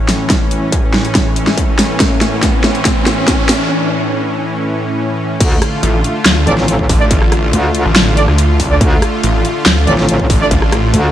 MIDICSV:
0, 0, Header, 1, 7, 480
1, 0, Start_track
1, 0, Key_signature, -1, "minor"
1, 0, Tempo, 425532
1, 337, Time_signature, 4, 2, 24, 8
1, 12539, End_track
2, 0, Start_track
2, 0, Title_t, "Brass ensemble"
2, 0, Program_c, 0, 61
2, 7297, Note_on_c, 0, 62, 94
2, 7297, Note_on_c, 0, 69, 86
2, 7297, Note_on_c, 0, 74, 103
2, 7362, Note_off_c, 0, 62, 0
2, 7362, Note_off_c, 0, 69, 0
2, 7362, Note_off_c, 0, 74, 0
2, 7901, Note_on_c, 0, 62, 87
2, 7901, Note_on_c, 0, 69, 84
2, 7901, Note_on_c, 0, 74, 99
2, 7962, Note_off_c, 0, 62, 0
2, 7962, Note_off_c, 0, 69, 0
2, 7962, Note_off_c, 0, 74, 0
2, 9217, Note_on_c, 0, 62, 93
2, 9217, Note_on_c, 0, 69, 86
2, 9217, Note_on_c, 0, 74, 103
2, 9282, Note_off_c, 0, 69, 0
2, 9283, Note_off_c, 0, 62, 0
2, 9283, Note_off_c, 0, 74, 0
2, 9821, Note_on_c, 0, 62, 92
2, 9821, Note_on_c, 0, 69, 87
2, 9821, Note_on_c, 0, 74, 101
2, 9882, Note_off_c, 0, 62, 0
2, 9882, Note_off_c, 0, 69, 0
2, 9882, Note_off_c, 0, 74, 0
2, 11137, Note_on_c, 0, 62, 88
2, 11137, Note_on_c, 0, 69, 88
2, 11137, Note_on_c, 0, 74, 106
2, 11202, Note_off_c, 0, 69, 0
2, 11202, Note_off_c, 0, 74, 0
2, 11203, Note_off_c, 0, 62, 0
2, 11740, Note_on_c, 0, 62, 90
2, 11740, Note_on_c, 0, 69, 84
2, 11740, Note_on_c, 0, 74, 107
2, 11802, Note_off_c, 0, 62, 0
2, 11802, Note_off_c, 0, 69, 0
2, 11802, Note_off_c, 0, 74, 0
2, 12539, End_track
3, 0, Start_track
3, 0, Title_t, "Supersaw synth"
3, 0, Program_c, 1, 81
3, 0, Note_on_c, 1, 45, 80
3, 0, Note_on_c, 1, 52, 74
3, 0, Note_on_c, 1, 61, 89
3, 6051, Note_off_c, 1, 45, 0
3, 6051, Note_off_c, 1, 52, 0
3, 6051, Note_off_c, 1, 61, 0
3, 6097, Note_on_c, 1, 50, 80
3, 6097, Note_on_c, 1, 57, 75
3, 6097, Note_on_c, 1, 65, 83
3, 12539, Note_off_c, 1, 50, 0
3, 12539, Note_off_c, 1, 57, 0
3, 12539, Note_off_c, 1, 65, 0
3, 12539, End_track
4, 0, Start_track
4, 0, Title_t, "Wobble bass"
4, 0, Program_c, 2, 39
4, 6097, Note_on_c, 2, 38, 98
4, 6318, Note_off_c, 2, 38, 0
4, 7297, Note_on_c, 2, 33, 94
4, 7758, Note_off_c, 2, 33, 0
4, 8497, Note_on_c, 2, 38, 103
4, 8841, Note_off_c, 2, 38, 0
4, 9937, Note_on_c, 2, 38, 100
4, 10158, Note_off_c, 2, 38, 0
4, 11137, Note_on_c, 2, 33, 92
4, 11598, Note_off_c, 2, 33, 0
4, 12336, Note_on_c, 2, 38, 104
4, 12539, Note_off_c, 2, 38, 0
4, 12539, End_track
5, 0, Start_track
5, 0, Title_t, "Detuned saw bass"
5, 0, Program_c, 3, 39
5, 6577, Note_on_c, 3, 33, 102
5, 6798, Note_off_c, 3, 33, 0
5, 7057, Note_on_c, 3, 38, 95
5, 7278, Note_off_c, 3, 38, 0
5, 7777, Note_on_c, 3, 33, 101
5, 8478, Note_off_c, 3, 33, 0
5, 8861, Note_on_c, 3, 33, 98
5, 9321, Note_off_c, 3, 33, 0
5, 9341, Note_on_c, 3, 38, 100
5, 9801, Note_off_c, 3, 38, 0
5, 9821, Note_on_c, 3, 38, 100
5, 9918, Note_off_c, 3, 38, 0
5, 10417, Note_on_c, 3, 33, 106
5, 10638, Note_off_c, 3, 33, 0
5, 10897, Note_on_c, 3, 38, 96
5, 11118, Note_off_c, 3, 38, 0
5, 11617, Note_on_c, 3, 33, 95
5, 12318, Note_off_c, 3, 33, 0
5, 12539, End_track
6, 0, Start_track
6, 0, Title_t, "Riser"
6, 0, Program_c, 4, 103
6, 0, Note_on_c, 4, 60, 79
6, 4177, Note_off_c, 4, 60, 0
6, 12539, End_track
7, 0, Start_track
7, 0, Title_t, "Drums"
7, 97, Note_on_c, 9, 38, 56
7, 97, Note_on_c, 9, 46, 88
7, 210, Note_off_c, 9, 38, 0
7, 210, Note_off_c, 9, 46, 0
7, 337, Note_on_c, 9, 36, 99
7, 337, Note_on_c, 9, 38, 64
7, 337, Note_on_c, 9, 42, 79
7, 449, Note_off_c, 9, 36, 0
7, 450, Note_off_c, 9, 38, 0
7, 450, Note_off_c, 9, 42, 0
7, 577, Note_on_c, 9, 42, 49
7, 690, Note_off_c, 9, 42, 0
7, 817, Note_on_c, 9, 36, 101
7, 817, Note_on_c, 9, 42, 77
7, 929, Note_off_c, 9, 36, 0
7, 930, Note_off_c, 9, 42, 0
7, 1057, Note_on_c, 9, 38, 61
7, 1170, Note_off_c, 9, 38, 0
7, 1181, Note_on_c, 9, 42, 36
7, 1294, Note_off_c, 9, 42, 0
7, 1296, Note_on_c, 9, 36, 92
7, 1297, Note_on_c, 9, 38, 62
7, 1297, Note_on_c, 9, 42, 74
7, 1409, Note_off_c, 9, 36, 0
7, 1410, Note_off_c, 9, 38, 0
7, 1410, Note_off_c, 9, 42, 0
7, 1537, Note_on_c, 9, 42, 53
7, 1650, Note_off_c, 9, 42, 0
7, 1661, Note_on_c, 9, 38, 60
7, 1774, Note_off_c, 9, 38, 0
7, 1776, Note_on_c, 9, 36, 93
7, 1777, Note_on_c, 9, 42, 79
7, 1889, Note_off_c, 9, 36, 0
7, 1890, Note_off_c, 9, 42, 0
7, 2017, Note_on_c, 9, 38, 72
7, 2017, Note_on_c, 9, 46, 96
7, 2130, Note_off_c, 9, 38, 0
7, 2130, Note_off_c, 9, 46, 0
7, 2256, Note_on_c, 9, 36, 99
7, 2257, Note_on_c, 9, 38, 77
7, 2257, Note_on_c, 9, 42, 84
7, 2369, Note_off_c, 9, 36, 0
7, 2370, Note_off_c, 9, 38, 0
7, 2370, Note_off_c, 9, 42, 0
7, 2497, Note_on_c, 9, 38, 71
7, 2497, Note_on_c, 9, 42, 49
7, 2610, Note_off_c, 9, 38, 0
7, 2610, Note_off_c, 9, 42, 0
7, 2737, Note_on_c, 9, 36, 100
7, 2737, Note_on_c, 9, 38, 74
7, 2737, Note_on_c, 9, 42, 82
7, 2849, Note_off_c, 9, 36, 0
7, 2850, Note_off_c, 9, 38, 0
7, 2850, Note_off_c, 9, 42, 0
7, 2977, Note_on_c, 9, 38, 79
7, 3090, Note_off_c, 9, 38, 0
7, 3101, Note_on_c, 9, 42, 39
7, 3214, Note_off_c, 9, 42, 0
7, 3216, Note_on_c, 9, 36, 93
7, 3217, Note_on_c, 9, 38, 84
7, 3217, Note_on_c, 9, 42, 81
7, 3329, Note_off_c, 9, 36, 0
7, 3330, Note_off_c, 9, 38, 0
7, 3330, Note_off_c, 9, 42, 0
7, 3457, Note_on_c, 9, 38, 83
7, 3457, Note_on_c, 9, 42, 55
7, 3570, Note_off_c, 9, 38, 0
7, 3570, Note_off_c, 9, 42, 0
7, 3697, Note_on_c, 9, 36, 93
7, 3697, Note_on_c, 9, 38, 85
7, 3697, Note_on_c, 9, 42, 79
7, 3809, Note_off_c, 9, 36, 0
7, 3809, Note_off_c, 9, 38, 0
7, 3809, Note_off_c, 9, 42, 0
7, 3937, Note_on_c, 9, 38, 91
7, 3937, Note_on_c, 9, 46, 95
7, 4050, Note_off_c, 9, 38, 0
7, 4050, Note_off_c, 9, 46, 0
7, 6097, Note_on_c, 9, 36, 121
7, 6097, Note_on_c, 9, 42, 85
7, 6097, Note_on_c, 9, 49, 108
7, 6210, Note_off_c, 9, 36, 0
7, 6210, Note_off_c, 9, 42, 0
7, 6210, Note_off_c, 9, 49, 0
7, 6337, Note_on_c, 9, 37, 73
7, 6337, Note_on_c, 9, 42, 55
7, 6450, Note_off_c, 9, 37, 0
7, 6450, Note_off_c, 9, 42, 0
7, 6577, Note_on_c, 9, 42, 85
7, 6690, Note_off_c, 9, 42, 0
7, 6817, Note_on_c, 9, 42, 53
7, 6930, Note_off_c, 9, 42, 0
7, 7057, Note_on_c, 9, 38, 116
7, 7057, Note_on_c, 9, 39, 89
7, 7057, Note_on_c, 9, 42, 82
7, 7170, Note_off_c, 9, 38, 0
7, 7170, Note_off_c, 9, 39, 0
7, 7170, Note_off_c, 9, 42, 0
7, 7297, Note_on_c, 9, 42, 53
7, 7410, Note_off_c, 9, 42, 0
7, 7421, Note_on_c, 9, 38, 38
7, 7534, Note_off_c, 9, 38, 0
7, 7537, Note_on_c, 9, 42, 81
7, 7650, Note_off_c, 9, 42, 0
7, 7661, Note_on_c, 9, 36, 62
7, 7773, Note_off_c, 9, 36, 0
7, 7777, Note_on_c, 9, 36, 102
7, 7777, Note_on_c, 9, 46, 92
7, 7889, Note_off_c, 9, 36, 0
7, 7890, Note_off_c, 9, 46, 0
7, 8017, Note_on_c, 9, 36, 125
7, 8017, Note_on_c, 9, 42, 83
7, 8129, Note_off_c, 9, 36, 0
7, 8130, Note_off_c, 9, 42, 0
7, 8141, Note_on_c, 9, 37, 59
7, 8254, Note_off_c, 9, 37, 0
7, 8257, Note_on_c, 9, 37, 70
7, 8257, Note_on_c, 9, 42, 51
7, 8369, Note_off_c, 9, 37, 0
7, 8369, Note_off_c, 9, 42, 0
7, 8497, Note_on_c, 9, 42, 78
7, 8609, Note_off_c, 9, 42, 0
7, 8737, Note_on_c, 9, 42, 52
7, 8850, Note_off_c, 9, 42, 0
7, 8977, Note_on_c, 9, 38, 118
7, 8977, Note_on_c, 9, 39, 93
7, 8977, Note_on_c, 9, 42, 76
7, 9090, Note_off_c, 9, 38, 0
7, 9090, Note_off_c, 9, 39, 0
7, 9090, Note_off_c, 9, 42, 0
7, 9217, Note_on_c, 9, 42, 54
7, 9330, Note_off_c, 9, 42, 0
7, 9341, Note_on_c, 9, 37, 51
7, 9454, Note_off_c, 9, 37, 0
7, 9457, Note_on_c, 9, 42, 77
7, 9570, Note_off_c, 9, 42, 0
7, 9697, Note_on_c, 9, 36, 59
7, 9697, Note_on_c, 9, 46, 84
7, 9810, Note_off_c, 9, 36, 0
7, 9810, Note_off_c, 9, 46, 0
7, 9937, Note_on_c, 9, 36, 127
7, 9937, Note_on_c, 9, 42, 82
7, 10050, Note_off_c, 9, 36, 0
7, 10050, Note_off_c, 9, 42, 0
7, 10177, Note_on_c, 9, 37, 76
7, 10177, Note_on_c, 9, 42, 48
7, 10290, Note_off_c, 9, 37, 0
7, 10290, Note_off_c, 9, 42, 0
7, 10417, Note_on_c, 9, 42, 76
7, 10530, Note_off_c, 9, 42, 0
7, 10657, Note_on_c, 9, 42, 49
7, 10770, Note_off_c, 9, 42, 0
7, 10897, Note_on_c, 9, 38, 125
7, 10897, Note_on_c, 9, 39, 93
7, 10897, Note_on_c, 9, 42, 78
7, 11010, Note_off_c, 9, 38, 0
7, 11010, Note_off_c, 9, 39, 0
7, 11010, Note_off_c, 9, 42, 0
7, 11137, Note_on_c, 9, 42, 50
7, 11250, Note_off_c, 9, 42, 0
7, 11261, Note_on_c, 9, 38, 40
7, 11374, Note_off_c, 9, 38, 0
7, 11377, Note_on_c, 9, 42, 78
7, 11490, Note_off_c, 9, 42, 0
7, 11500, Note_on_c, 9, 36, 64
7, 11613, Note_off_c, 9, 36, 0
7, 11616, Note_on_c, 9, 36, 111
7, 11617, Note_on_c, 9, 46, 89
7, 11729, Note_off_c, 9, 36, 0
7, 11730, Note_off_c, 9, 46, 0
7, 11857, Note_on_c, 9, 36, 120
7, 11857, Note_on_c, 9, 42, 75
7, 11969, Note_off_c, 9, 36, 0
7, 11970, Note_off_c, 9, 42, 0
7, 11981, Note_on_c, 9, 37, 65
7, 12094, Note_off_c, 9, 37, 0
7, 12097, Note_on_c, 9, 37, 77
7, 12097, Note_on_c, 9, 42, 50
7, 12210, Note_off_c, 9, 37, 0
7, 12210, Note_off_c, 9, 42, 0
7, 12337, Note_on_c, 9, 42, 79
7, 12450, Note_off_c, 9, 42, 0
7, 12539, End_track
0, 0, End_of_file